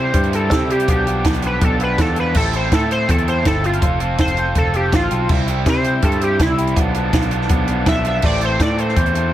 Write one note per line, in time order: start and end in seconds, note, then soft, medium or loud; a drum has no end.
0.00 0.12 C3 medium
0.00 0.12 G3 medium
0.00 0.13 C4 loud
0.00 0.13 E4 medium
0.00 0.14 G4 loud
0.00 0.32 C5 loud
0.13 0.49 G2 medium
0.13 0.31 G3 loud
0.13 0.32 C4 loud
0.13 0.32 E4 medium
0.13 0.33 G4 loud
0.13 kick loud
0.13 closed hi-hat loud
0.23 closed hi-hat soft
0.32 0.50 G3 medium
0.32 0.50 C4 medium
0.32 0.51 E4 medium
0.32 0.52 G4 medium
0.32 0.69 A4 medium
0.32 closed hi-hat medium
0.51 0.86 C3 loud
0.51 0.68 G3 medium
0.51 0.69 C4 loud
0.51 0.69 E4 loud
0.51 0.70 G4 loud
0.51 kick loud
0.51 snare loud
0.51 closed hi-hat loud
0.69 0.86 G3 medium
0.69 0.87 C4 medium
0.69 0.87 E4 loud
0.69 0.87 G4 loud
0.69 0.88 G4 medium
0.69 closed hi-hat medium
0.80 closed hi-hat medium
0.88 1.23 B1 loud
0.88 1.05 F3 medium
0.88 1.06 B3 loud
0.88 1.07 D4 loud
0.88 1.25 G4 medium
0.88 1.07 G4 medium
0.88 kick loud
0.88 closed hi-hat loud
1.06 1.24 F3 medium
1.06 1.24 B3 medium
1.06 1.25 D4 medium
1.06 1.25 G4 medium
1.06 closed hi-hat medium
1.25 1.60 B1 medium
1.25 1.42 F3 medium
1.25 1.43 B3 medium
1.25 1.43 D4 medium
1.25 1.44 G4 loud
1.25 kick loud
1.25 snare loud
1.25 closed hi-hat loud
1.34 closed hi-hat medium
1.42 1.60 F3 medium
1.42 1.61 B3 medium
1.42 1.61 D4 loud
1.42 1.62 G4 loud
1.42 1.62 B4 medium
1.42 closed hi-hat medium
1.61 1.96 B1 medium
1.61 1.78 F3 loud
1.61 1.79 B3 loud
1.61 1.79 D4 loud
1.61 1.80 G4 loud
1.61 1.81 A4 medium
1.61 kick loud
1.61 closed hi-hat loud
1.79 1.96 F3 medium
1.79 1.97 B3 medium
1.79 1.98 D4 medium
1.79 1.98 G4 medium
1.79 closed hi-hat medium
1.83 1.99 B4 loud
1.97 2.33 E2 loud
1.97 2.16 F3 loud
1.97 2.16 B3 medium
1.97 2.16 D4 loud
1.97 2.17 G4 loud
1.97 2.17 A4 medium
1.97 kick loud
1.97 snare loud
1.97 closed hi-hat loud
2.16 2.34 F3 medium
2.16 2.34 B3 loud
2.16 2.34 D4 loud
2.16 2.35 G4 medium
2.16 2.36 B4 medium
2.16 closed hi-hat medium
2.34 2.70 A1 loud
2.34 2.52 C4 medium
2.34 2.54 E4 medium
2.34 2.54 A4 loud
2.34 kick loud
2.34 crash loud
2.53 2.71 C4 medium
2.53 2.72 E4 medium
2.53 2.73 A4 medium
2.53 2.73 C5 medium
2.53 closed hi-hat medium
2.72 3.07 A2 medium
2.72 2.90 C4 medium
2.72 2.91 E4 medium
2.72 2.92 A4 loud
2.72 2.91 A4 medium
2.72 kick loud
2.72 snare loud
2.72 closed hi-hat loud
2.91 3.07 C4 loud
2.91 3.08 E4 loud
2.91 3.07 A4 medium
2.91 3.09 C5 loud
2.91 closed hi-hat medium
3.07 3.44 E2 loud
3.07 3.26 C4 medium
3.07 3.27 E4 medium
3.07 3.27 A4 loud
3.07 3.27 A4 medium
3.07 kick loud
3.07 closed hi-hat medium
3.18 closed hi-hat soft
3.27 3.45 C4 medium
3.27 3.46 E4 medium
3.27 3.45 A4 medium
3.27 3.46 C5 medium
3.27 closed hi-hat medium
3.45 3.80 G1 loud
3.45 3.62 C4 medium
3.45 3.63 E4 loud
3.45 3.63 A4 loud
3.45 3.64 A4 medium
3.45 kick loud
3.45 snare loud
3.45 closed hi-hat loud
3.63 3.81 C4 medium
3.63 3.82 E4 medium
3.63 3.83 F4 medium
3.63 3.81 A4 medium
3.63 closed hi-hat medium
3.73 closed hi-hat medium
3.82 4.17 F1 loud
3.82 3.99 C4 medium
3.82 3.99 F4 loud
3.82 4.00 A4 loud
3.82 kick loud
3.82 closed hi-hat loud
3.99 4.18 C4 medium
3.99 4.18 F4 medium
3.99 4.19 A4 medium
3.99 closed hi-hat medium
4.18 4.54 F1 medium
4.18 4.37 C4 medium
4.18 4.37 F4 medium
4.18 4.38 A4 loud
4.18 4.55 C5 loud
4.18 kick loud
4.18 snare loud
4.18 closed hi-hat loud
4.28 closed hi-hat medium
4.37 4.54 C4 medium
4.37 4.55 F4 medium
4.37 4.56 A4 medium
4.37 closed hi-hat medium
4.55 4.91 F1 medium
4.55 4.73 C4 loud
4.55 4.74 F4 medium
4.55 4.75 A4 loud
4.55 4.75 A4 medium
4.55 kick loud
4.55 closed hi-hat loud
4.74 4.91 C4 medium
4.74 4.92 F4 medium
4.74 4.93 G4 medium
4.74 4.93 A4 medium
4.74 closed hi-hat medium
4.92 5.09 A1 medium
4.92 5.10 C4 medium
4.92 5.11 F4 medium
4.92 5.29 F4 loud
4.92 5.12 A4 loud
4.92 kick loud
4.92 snare loud
4.92 closed hi-hat medium
5.11 5.28 B1 medium
5.11 5.28 C4 medium
5.11 5.29 F4 medium
5.11 5.29 A4 medium
5.11 closed hi-hat medium
5.29 5.64 C2 loud
5.29 5.47 G3 medium
5.29 5.47 C4 medium
5.29 5.48 E4 loud
5.29 kick loud
5.29 crash medium
5.48 5.66 G3 medium
5.48 5.66 C4 medium
5.48 5.66 E4 medium
5.48 closed hi-hat medium
5.66 6.01 C3 medium
5.66 5.84 G3 medium
5.66 5.84 C4 medium
5.66 5.84 E4 medium
5.66 6.03 C5 loud
5.66 kick loud
5.66 snare loud
5.66 closed hi-hat loud
5.84 6.02 G3 medium
5.84 6.02 C4 medium
5.84 6.03 E4 loud
5.84 closed hi-hat medium
6.02 6.38 G2 medium
6.02 6.19 G3 medium
6.02 6.20 C4 medium
6.02 6.21 E4 loud
6.02 6.21 A4 medium
6.02 kick loud
6.02 closed hi-hat medium
6.12 closed hi-hat soft
6.21 6.39 G3 medium
6.21 6.39 C4 medium
6.21 6.40 E4 medium
6.21 6.40 G4 medium
6.21 closed hi-hat medium
6.39 6.74 C2 loud
6.39 6.57 G3 loud
6.39 6.58 C4 medium
6.39 6.58 E4 medium
6.39 6.76 E4 loud
6.39 kick loud
6.39 snare loud
6.39 closed hi-hat loud
6.58 6.75 G3 medium
6.58 6.76 C4 medium
6.58 6.76 E4 loud
6.58 closed hi-hat medium
6.67 closed hi-hat soft
6.76 7.11 B1 loud
6.76 6.93 F3 medium
6.76 6.93 B3 loud
6.76 6.94 D4 medium
6.76 kick loud
6.76 closed hi-hat loud
6.94 7.11 F3 medium
6.94 7.12 B3 medium
6.94 7.13 D4 medium
6.94 closed hi-hat medium
7.13 7.48 B1 medium
7.13 7.30 F3 medium
7.13 7.31 B3 loud
7.13 7.31 D4 loud
7.13 kick loud
7.13 snare loud
7.13 closed hi-hat loud
7.22 closed hi-hat medium
7.31 7.49 F3 medium
7.31 7.49 B3 medium
7.31 7.50 D4 medium
7.31 closed hi-hat medium
7.42 snare soft
7.49 7.84 B1 loud
7.49 7.66 F3 medium
7.49 7.67 B3 loud
7.49 7.67 D4 loud
7.49 kick loud
7.49 closed hi-hat loud
7.67 7.85 F3 medium
7.67 7.86 B3 medium
7.67 7.86 D4 medium
7.67 closed hi-hat medium
7.86 8.21 B1 loud
7.86 8.03 F3 medium
7.86 8.04 B3 loud
7.86 8.05 D4 loud
7.86 8.05 E5 loud
7.86 kick loud
7.86 snare loud
7.86 closed hi-hat loud
8.05 8.22 F3 medium
8.05 8.22 B3 medium
8.05 8.22 D4 medium
8.05 8.24 E5 medium
8.05 closed hi-hat medium
8.22 8.58 A1 loud
8.22 8.40 E3 medium
8.22 8.41 A3 loud
8.22 8.40 C4 loud
8.22 8.42 D5 medium
8.22 kick loud
8.22 crash loud
8.40 8.58 E3 medium
8.40 8.59 A3 medium
8.40 8.59 C4 medium
8.40 closed hi-hat medium
8.45 8.61 C5 medium
8.59 8.94 A2 medium
8.59 8.77 E3 medium
8.59 8.78 A3 medium
8.59 8.77 C4 loud
8.59 8.79 D5 medium
8.59 kick loud
8.59 snare loud
8.59 closed hi-hat loud
8.77 8.96 E3 medium
8.77 8.96 A3 medium
8.77 8.96 C4 loud
8.77 9.33 C5 loud
8.77 closed hi-hat medium
8.89 snare soft
8.96 9.31 E2 medium
8.96 9.13 E3 loud
8.96 9.13 A3 loud
8.96 9.14 C4 loud
8.96 kick loud
8.96 closed hi-hat loud
9.06 closed hi-hat soft
9.14 9.33 E3 medium
9.14 9.32 A3 medium
9.14 9.33 C4 medium
9.14 closed hi-hat medium